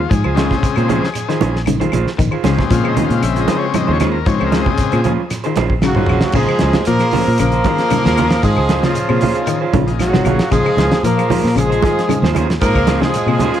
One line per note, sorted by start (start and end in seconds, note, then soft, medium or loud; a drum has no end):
0.09 0.23 G#2 loud
0.09 0.27 F3 medium
0.09 1.62 G#4 medium
0.09 kick medium
0.09 closed hi-hat medium
0.09 shekere medium
0.24 0.48 C#2 medium
0.24 0.37 F4 soft
0.24 0.37 G#4 soft
0.24 0.37 C5 soft
0.24 claves medium
0.34 1.10 C#3 medium
0.34 1.10 G#3 medium
0.34 0.53 G#3 medium
0.34 1.10 C4 medium
0.34 0.53 C#4 medium
0.34 0.54 F4 medium
0.34 0.54 G#4 medium
0.34 snare medium
0.34 closed hi-hat soft
0.34 high conga medium
0.34 shekere soft
0.39 0.54 C5 medium
0.51 kick medium
0.51 snare soft
0.51 low conga medium
0.63 kick medium
0.63 closed hi-hat medium
0.63 high conga soft
0.63 shekere medium
0.76 1.00 A#2 medium
0.76 0.88 F4 soft
0.76 0.88 G#4 medium
0.76 0.88 C5 medium
0.76 closed hi-hat soft
0.76 claves medium
0.88 1.05 F3 medium
0.88 1.05 C#4 medium
0.88 1.05 F4 medium
0.88 1.05 G#4 medium
0.88 1.05 C5 medium
0.88 closed hi-hat medium
0.88 low conga medium
0.88 shekere soft
1.04 snare soft
1.14 closed hi-hat medium
1.14 high conga soft
1.14 claves medium
1.14 shekere medium
1.29 1.45 D#3 medium
1.29 1.40 F4 medium
1.29 1.41 G#4 medium
1.29 1.41 C5 medium
1.29 snare soft
1.29 closed hi-hat soft
1.41 1.87 A#1 medium
1.41 1.57 C#4 medium
1.41 1.57 F4 medium
1.41 1.58 C5 medium
1.41 closed hi-hat soft
1.41 high conga loud
1.41 shekere soft
1.56 snare soft
1.66 1.76 C#3 medium
1.66 closed hi-hat medium
1.66 high conga medium
1.66 claves medium
1.66 shekere medium
1.80 1.98 D#3 medium
1.80 1.91 F4 medium
1.80 1.91 G#4 medium
1.80 1.92 C5 medium
1.80 closed hi-hat soft
1.80 high conga medium
1.92 2.05 A#1 medium
1.92 2.09 F4 medium
1.92 2.09 G#4 medium
1.92 2.09 C5 medium
1.92 closed hi-hat medium
1.92 low conga medium
1.92 claves medium
1.92 shekere soft
2.07 snare soft
2.19 2.31 A#1 medium
2.19 2.35 D#3 medium
2.19 kick loud
2.19 closed hi-hat medium
2.19 high conga soft
2.19 shekere medium
2.31 2.43 F4 soft
2.31 2.44 G#4 medium
2.31 2.44 C5 medium
2.31 muted fingered electric bass stroke soft
2.31 claves medium
2.43 2.57 C#2 medium
2.43 3.73 C#3 medium
2.43 2.61 C#3 medium
2.43 3.73 G#3 medium
2.43 3.73 C4 medium
2.43 2.61 C#4 medium
2.43 2.61 F4 medium
2.43 2.61 G#4 medium
2.43 2.61 C5 medium
2.43 snare medium
2.43 closed hi-hat medium
2.43 high conga medium
2.43 shekere soft
2.58 kick medium
2.58 snare soft
2.58 low conga medium
2.70 3.06 A#2 medium
2.70 2.87 F3 medium
2.70 2.88 F5 loud
2.70 kick medium
2.70 closed hi-hat medium
2.70 high conga soft
2.70 shekere medium
2.84 2.96 F4 soft
2.84 2.96 G#4 medium
2.84 2.96 C5 medium
2.84 claves medium
2.88 3.05 D#5 medium
2.96 3.13 D#3 medium
2.96 3.13 C#4 medium
2.96 3.13 F4 medium
2.96 3.13 G#4 medium
2.96 muted clean electric guitar stroke medium
2.96 closed hi-hat medium
2.96 high conga medium
2.96 low conga medium
2.96 shekere soft
3.05 3.22 F5 medium
3.10 3.21 A#2 medium
3.10 closed hi-hat soft
3.22 3.46 A#1 medium
3.22 3.40 E5 medium
3.22 closed hi-hat medium
3.22 high conga soft
3.22 claves medium
3.22 shekere medium
3.36 3.48 F4 soft
3.36 3.48 G#4 medium
3.36 closed hi-hat soft
3.41 3.57 D#5 medium
3.48 3.65 F3 medium
3.48 3.65 C#4 medium
3.48 3.65 F4 medium
3.48 3.65 G#4 medium
3.48 3.65 C5 medium
3.48 snare soft
3.48 closed hi-hat medium
3.48 high conga loud
3.48 shekere soft
3.58 3.75 C#5 medium
3.74 3.98 C#3 soft
3.74 3.91 F3 medium
3.74 3.98 G#3 soft
3.74 3.98 C4 soft
3.74 3.92 D#5 medium
3.74 closed hi-hat medium
3.74 high conga loud
3.74 claves medium
3.74 shekere medium
3.87 4.23 D#2 medium
3.87 4.00 F4 medium
3.87 4.00 G#4 medium
3.87 4.00 C5 medium
3.87 high conga medium
3.93 4.09 C#5 medium
4.00 4.17 G#3 medium
4.00 4.17 C#4 medium
4.00 4.17 F4 medium
4.00 4.17 G#4 medium
4.00 4.17 C5 medium
4.00 snare soft
4.00 closed hi-hat medium
4.00 low conga medium
4.00 claves medium
4.00 shekere soft
4.11 4.27 A#4 medium
4.26 4.39 G#2 medium
4.26 5.01 C#3 medium
4.26 4.43 F3 medium
4.26 5.01 G#3 soft
4.26 5.01 C4 medium
4.26 4.44 C#5 medium
4.26 kick loud
4.26 closed hi-hat medium
4.26 high conga soft
4.26 shekere medium
4.40 4.64 C#2 medium
4.40 4.51 F4 soft
4.40 4.52 G#4 soft
4.40 4.52 C5 medium
4.40 claves medium
4.46 4.62 A#4 medium
4.52 4.69 G#3 medium
4.52 4.69 C#4 soft
4.52 4.69 F4 medium
4.52 4.69 G#4 medium
4.52 4.69 C5 medium
4.52 snare medium
4.52 closed hi-hat soft
4.52 high conga medium
4.52 shekere soft
4.63 5.13 G#4 loud
4.63 kick medium
4.63 low conga medium
4.78 kick medium
4.78 closed hi-hat medium
4.78 high conga soft
4.78 shekere medium
4.92 5.16 A#2 medium
4.92 5.03 F4 soft
4.92 5.04 G#4 soft
4.92 5.04 C5 medium
4.92 closed hi-hat soft
4.92 claves medium
5.04 5.21 F3 medium
5.04 5.21 C#4 medium
5.04 5.21 F4 medium
5.04 5.21 C5 medium
5.04 muted clean electric guitar stroke medium
5.04 closed hi-hat medium
5.04 high conga medium
5.04 low conga medium
5.04 shekere soft
5.30 snare soft
5.30 closed hi-hat medium
5.30 high conga soft
5.30 claves medium
5.30 shekere medium
5.44 5.62 D#3 medium
5.44 5.56 F4 medium
5.44 5.55 G#4 medium
5.44 5.56 C5 medium
5.44 closed hi-hat soft
5.56 6.03 A#1 loud
5.56 5.73 C#4 medium
5.56 5.73 F4 medium
5.56 5.73 G#4 medium
5.56 5.73 C5 medium
5.56 snare soft
5.56 closed hi-hat soft
5.56 high conga loud
5.56 shekere soft
5.70 kick medium
5.82 5.92 C#3 medium
5.82 6.32 F#3 medium
5.82 6.32 F#4 medium
5.82 snare medium
5.82 high conga medium
5.82 claves medium
5.82 shekere medium
5.88 6.41 C#3 medium
5.95 6.14 D#3 medium
5.95 6.08 F4 medium
5.95 6.09 G#4 medium
5.95 6.09 C5 medium
5.95 mid tom medium
5.95 high conga medium
6.07 6.21 A#1 medium
6.07 6.25 C#4 medium
6.07 6.25 F4 medium
6.07 6.26 G#4 medium
6.07 6.26 C5 medium
6.07 mid tom medium
6.07 claves medium
6.07 shekere soft
6.21 snare medium
6.21 low conga medium
6.32 6.47 A#1 medium
6.32 6.52 C#3 medium
6.32 6.83 F3 medium
6.32 6.87 G#3 loud
6.32 6.83 A#3 medium
6.32 6.83 D#4 medium
6.32 6.87 G#4 loud
6.32 6.48 G#4 medium
6.32 6.83 G#4 medium
6.32 6.47 C5 medium
6.32 muted clean electric guitar stroke medium
6.32 kick medium
6.32 crash medium
6.32 shekere medium
6.40 6.89 F3 medium
6.48 6.60 G#4 soft
6.48 6.61 C5 medium
6.48 claves medium
6.59 6.74 C#2 medium
6.59 6.77 C#4 medium
6.59 6.77 F4 medium
6.59 6.78 G#4 medium
6.59 6.78 C5 medium
6.59 snare medium
6.59 closed hi-hat medium
6.59 high conga medium
6.59 shekere soft
6.73 snare medium
6.73 closed hi-hat soft
6.73 low conga medium
6.85 7.23 A#2 medium
6.85 7.04 F3 medium
6.85 7.36 A#3 loud
6.85 7.36 A#4 loud
6.85 closed hi-hat medium
6.85 shekere medium
6.89 7.37 F3 medium
6.99 7.13 G#4 soft
6.99 7.13 C5 soft
6.99 snare soft
6.99 closed hi-hat soft
6.99 claves medium
7.11 7.30 F3 medium
7.11 7.29 C#4 medium
7.11 7.29 F4 medium
7.11 7.30 G#4 medium
7.11 7.30 C5 medium
7.11 open hi-hat medium
7.11 low conga medium
7.11 shekere soft
7.27 7.38 A#2 medium
7.38 7.63 A#1 medium
7.38 7.56 C#3 medium
7.38 8.46 F3 loud
7.38 8.40 A#3 loud
7.38 8.40 A#4 loud
7.38 closed hi-hat medium
7.38 high conga soft
7.38 claves medium
7.38 shekere medium
7.52 7.64 F4 soft
7.52 7.65 C5 medium
7.52 muted clean electric guitar stroke medium
7.52 closed hi-hat soft
7.64 7.82 D#3 medium
7.64 7.81 C#4 medium
7.64 7.81 G#4 medium
7.64 7.82 C5 medium
7.64 muted clean electric guitar stroke medium
7.64 kick medium
7.64 snare soft
7.64 closed hi-hat medium
7.64 high conga loud
7.64 shekere soft
7.78 7.96 F3 medium
7.78 7.97 A#3 medium
7.78 7.97 D#4 medium
7.78 7.97 G#4 medium
7.78 snare soft
7.78 closed hi-hat soft
7.90 8.08 C#3 medium
7.90 closed hi-hat medium
7.90 high conga medium
7.90 claves medium
7.90 shekere medium
8.05 8.40 D#2 medium
8.05 8.17 F4 medium
8.05 8.17 G#4 medium
8.05 8.17 C5 medium
8.05 snare medium
8.05 high conga medium
8.17 8.30 F3 medium
8.17 8.30 A#3 medium
8.17 8.34 C#4 medium
8.17 8.30 D#4 medium
8.17 8.34 F4 medium
8.17 8.30 G#4 loud
8.17 8.34 C5 medium
8.17 muted clean electric guitar stroke medium
8.17 closed hi-hat soft
8.17 low conga medium
8.17 claves medium
8.17 shekere soft
8.30 snare medium
8.30 closed hi-hat soft
8.43 8.56 G#2 medium
8.43 8.60 D#3 medium
8.43 8.85 F3 medium
8.43 8.84 G#3 loud
8.43 8.50 D#4 medium
8.43 8.84 G#4 loud
8.43 8.51 A#4 medium
8.43 kick loud
8.43 closed hi-hat medium
8.43 shekere medium
8.57 8.81 C#2 medium
8.57 8.63 D#4 medium
8.57 8.69 F4 soft
8.57 8.63 G#4 medium
8.57 8.70 G#4 soft
8.57 8.70 C5 soft
8.57 claves medium
8.69 9.00 F3 medium
8.69 9.00 A#3 medium
8.69 8.86 C#4 medium
8.69 9.00 D#4 medium
8.69 8.86 F4 medium
8.69 9.00 G#4 medium
8.69 8.87 G#4 medium
8.69 8.87 C5 medium
8.69 snare medium
8.69 closed hi-hat medium
8.69 high conga medium
8.69 shekere soft
8.83 9.00 C#3 medium
8.83 9.85 C#3 medium
8.83 9.85 F3 medium
8.83 9.85 F4 medium
8.83 snare medium
8.83 low conga medium
8.95 closed hi-hat medium
8.95 high conga soft
8.95 shekere medium
9.09 9.33 A#2 medium
9.09 9.26 C3 medium
9.09 9.23 F4 soft
9.09 9.21 G#4 medium
9.09 9.21 C5 medium
9.09 claves medium
9.21 9.38 G#4 medium
9.21 9.39 C5 medium
9.21 muted clean electric guitar stroke medium
9.21 open hi-hat medium
9.21 low conga medium
9.21 shekere soft
9.35 9.59 F3 medium
9.35 9.59 A#3 medium
9.35 9.59 D#4 medium
9.35 9.60 G#4 medium
9.35 closed hi-hat soft
9.47 9.64 D#3 medium
9.47 closed hi-hat medium
9.47 high conga soft
9.47 claves medium
9.47 shekere loud
9.61 9.72 F4 soft
9.61 9.74 G#4 medium
9.61 9.73 C5 medium
9.73 10.20 A#1 loud
9.73 9.91 C#3 medium
9.73 9.90 C#4 medium
9.73 9.90 F4 medium
9.73 muted clean electric guitar stroke medium
9.73 kick medium
9.73 closed hi-hat medium
9.73 high conga loud
9.73 shekere soft
9.87 10.17 F3 medium
9.87 10.17 A#3 medium
9.87 10.17 D#4 medium
9.87 10.17 G#4 medium
9.87 closed hi-hat soft
9.99 10.49 C#3 medium
9.99 10.49 F#3 medium
9.99 10.49 F#4 medium
9.99 snare soft
9.99 closed hi-hat medium
9.99 high conga medium
9.99 claves medium
9.99 shekere medium
10.13 10.22 C3 medium
10.13 10.25 F4 soft
10.13 10.26 G#4 soft
10.13 10.26 C5 medium
10.13 snare medium
10.13 high conga medium
10.24 10.38 A#1 medium
10.24 10.43 C#3 medium
10.24 10.42 C#4 medium
10.24 10.42 F4 medium
10.24 10.43 G#4 medium
10.24 closed hi-hat soft
10.24 low conga medium
10.24 claves medium
10.24 shekere soft
10.39 snare medium
10.39 closed hi-hat soft
10.51 10.64 A#1 medium
10.51 10.68 C#3 medium
10.51 11.00 F3 medium
10.51 11.01 F3 medium
10.51 11.01 G#3 medium
10.51 11.00 A#3 medium
10.51 11.00 D#4 medium
10.51 11.00 G#4 loud
10.51 11.01 G#4 loud
10.51 kick loud
10.51 closed hi-hat medium
10.51 high conga soft
10.51 shekere medium
10.65 10.77 F4 soft
10.65 10.78 G#4 soft
10.65 10.78 C5 medium
10.65 claves medium
10.77 10.90 C#2 loud
10.77 10.95 C#4 medium
10.77 10.95 F4 medium
10.77 10.95 G#4 medium
10.77 snare medium
10.77 closed hi-hat medium
10.77 high conga medium
10.77 shekere soft
10.91 snare medium
10.91 closed hi-hat soft
10.91 low conga medium
11.03 11.39 A#2 medium
11.03 11.21 F3 medium
11.03 11.53 F3 medium
11.03 11.54 A#3 medium
11.03 11.54 A#4 loud
11.03 closed hi-hat medium
11.03 high conga soft
11.03 shekere medium
11.18 11.29 F4 soft
11.18 11.30 G#4 medium
11.18 11.30 C5 medium
11.18 closed hi-hat soft
11.18 claves medium
11.30 11.47 F3 medium
11.30 11.47 C#4 medium
11.30 11.47 F4 medium
11.30 11.47 G#4 medium
11.30 11.48 C5 medium
11.30 open hi-hat medium
11.30 high conga medium
11.30 low conga medium
11.30 shekere soft
11.44 11.55 A#2 medium
11.44 snare soft
11.55 11.79 A#1 medium
11.55 11.73 C#3 medium
11.55 12.30 F3 medium
11.55 12.31 G#3 loud
11.55 12.31 G#4 loud
11.55 closed hi-hat medium
11.55 high conga soft
11.55 claves medium
11.55 shekere medium
11.70 11.82 F4 soft
11.70 11.82 G#4 soft
11.70 11.83 C5 medium
11.70 closed hi-hat soft
11.82 12.00 D#3 medium
11.82 12.00 F4 medium
11.82 12.00 G#4 medium
11.82 12.00 C5 medium
11.82 kick medium
11.82 snare soft
11.82 closed hi-hat medium
11.82 high conga loud
11.82 shekere soft
11.97 12.14 F3 medium
11.97 12.14 A#3 medium
11.97 12.15 D#4 medium
11.97 12.15 G#4 medium
11.97 snare soft
11.97 closed hi-hat soft
12.09 12.26 C#3 medium
12.09 closed hi-hat medium
12.09 high conga medium
12.09 claves medium
12.09 shekere medium
12.22 12.57 D#2 loud
12.22 12.34 F4 medium
12.22 12.35 G#4 medium
12.22 12.35 C5 medium
12.22 snare medium
12.22 high conga medium
12.34 12.48 F3 medium
12.34 12.48 A#3 medium
12.34 12.52 C#4 medium
12.34 12.48 D#4 medium
12.34 12.52 F4 medium
12.34 12.48 G#4 loud
12.34 12.52 G#4 medium
12.34 12.52 C5 medium
12.34 closed hi-hat medium
12.34 low conga medium
12.34 claves medium
12.34 shekere soft
12.50 snare medium
12.50 closed hi-hat soft
12.61 12.74 G#2 medium
12.61 13.03 F3 loud
12.61 12.99 A#3 loud
12.61 12.69 D#4 medium
12.61 12.69 G#4 medium
12.61 12.99 A#4 loud
12.61 muted clean electric guitar stroke medium
12.61 kick medium
12.61 closed hi-hat medium
12.61 high conga soft
12.61 shekere medium
12.75 12.99 C#2 medium
12.75 12.81 D#4 medium
12.75 12.81 F4 loud
12.75 12.88 F4 soft
12.75 12.88 G#4 soft
12.75 12.88 C5 medium
12.75 kick medium
12.75 claves medium
12.87 13.18 F3 medium
12.87 13.18 A#3 medium
12.87 13.05 C#4 medium
12.87 13.18 D#4 medium
12.87 13.05 F4 medium
12.87 13.18 G#4 medium
12.87 13.05 G#4 medium
12.87 13.05 C5 medium
12.87 snare medium
12.87 closed hi-hat medium
12.87 high conga loud
12.87 shekere soft
13.01 13.18 C#3 medium
13.01 13.60 F3 medium
13.01 13.60 G#3 medium
13.01 13.60 G#4 loud
13.01 snare medium
13.01 low conga medium
13.14 closed hi-hat medium
13.14 high conga soft
13.14 shekere medium
13.26 13.50 A#2 medium
13.26 13.44 C3 medium
13.26 13.40 F4 soft
13.26 13.41 G#4 soft
13.26 13.41 C5 medium
13.26 claves medium
13.39 13.57 C#4 medium
13.39 13.57 F4 medium
13.39 13.58 G#4 medium
13.39 13.58 C5 medium
13.39 closed hi-hat medium
13.39 high conga medium
13.39 low conga medium
13.39 shekere soft
13.54 13.60 F3 medium
13.54 13.60 A#3 medium
13.54 13.60 D#4 medium
13.54 13.60 F4 medium
13.54 closed hi-hat soft